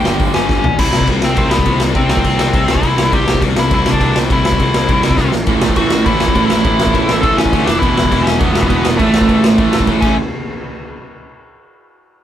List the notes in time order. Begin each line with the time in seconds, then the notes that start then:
Already playing: G2 D3 G3 D4 G5
0.05 G1 G2 D3 G3, snare
0.20 G1, kick, open hi-hat
0.34 G1 D3 G3 C#4, snare
0.38 G2
0.49 G1, kick, snare
0.64 B1, floor tom
0.79 C2 C3 G3 C4 E4, kick, crash
0.93 C2, snare
1.01 kick
1.07 C2 C3 G3 C4, kick, crash
1.22 C2 C4, snare
1.37 C2 C3 G3 C4, kick, crash
1.50 C2 B3, snare
1.59 kick
1.65 C2 C3 G3 C4, kick, crash
1.80 C2, snare
1.95 C2 C3 G3 C4, kick, crash
2.10 C2 C4, snare
2.17 kick
2.24 C2 C3 G3 C4, kick, crash
2.39 C2, snare
2.53 C2 C3 G3 C4, kick, crash
2.68 C2 E4, snare
2.76 kick
2.83 C2 C3 G3 C4, kick, crash
2.98 C2, snare
3.12 C2 C3 G3 C4 G4, kick, crash
3.27 C2, snare
3.34 kick
3.42 C2 C3 G3 C4, kick, crash
3.56 C2 E4, snare
3.71 C2 C3 G3 C4 E4, kick, crash
3.86 C2 D4, snare
3.93 kick
4.01 C2 C3 G3 C4, kick, crash
4.16 C2, snare
4.30 C2 C3 G3 C4 E4, kick, crash
4.45 C2 E4, snare
4.52 kick
4.60 C2 C3 G3 C4, kick, crash
4.74 C2, snare
4.89 C2 C3 G3 C4, kick, crash
5.03 C2, snare
5.11 kick
5.17 C2 C3 G3 C4, kick, snare
5.32 A1, snare
5.47 A1 A2 E3 A3, kick, crash
5.62 A1, snare
5.69 kick
5.76 A1 A2 E3 A3 F#4, kick, crash
5.90 A1, snare
6.06 A1 A2 E3 A3 E4, kick, crash
6.20 A1, snare
6.28 kick
6.35 A1 A2 E3 A3, kick, crash
6.47 A1 E4, snare
6.64 A1 A2 E3 A3, kick, crash
6.79 A1, snare
6.87 kick
6.93 A1 A2 E3 A3, kick, crash
7.09 A1, snare
7.21 A1 A2 E3 A3 A4, kick, crash
7.37 A1 C#4, snare
7.45 kick
7.53 D2 A2 E3 A3, kick, crash
7.65 E1 D4, snare
7.79 E1 E2 B2 E3 E4, kick, crash
7.97 E1, snare
8.04 kick
8.10 E1 E2 B2 E3, kick, crash
8.22 E1 C#4
8.27 snare
8.39 E1 E2 B2 E3 B3, kick, crash
8.53 E1 B3, snare
8.63 kick
8.68 E1 B2 E3 B3, kick, crash
8.72 E2
8.85 E1, snare
8.97 A1 A2 E3 A3, kick, crash
9.14 A1, snare
9.21 kick
9.29 A1 A2 E3 A3, kick, crash
9.44 A1, snare
9.58 A1 A2 E3 A3, kick, crash
9.73 A1, snare
9.80 kick
9.87 A1 A2 E3 A3, kick, crash
10.01 A1 A2 C#4, kick, crash
10.05 E3 A3